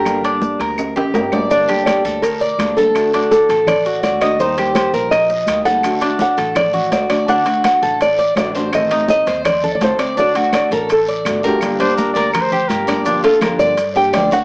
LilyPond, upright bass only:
\new Staff \with { instrumentName = "Upright bass" } { \clef bass \time 4/4 \key g \minor \tempo 4 = 166 g,,4. d,4 a,,8 g,,4~ | g,,4. d,4. d,4~ | d,4. a,,4. ees,4~ | ees,4. bes,,4. d,4~ |
d,4. a,,4. d,4~ | d,4. a,,4. a,,4~ | a,,4. ees,4. d,4~ | d,4. a,,4. g,,4~ |
g,,4. d,4. g,,4~ | g,,4. g,4. d,4 | }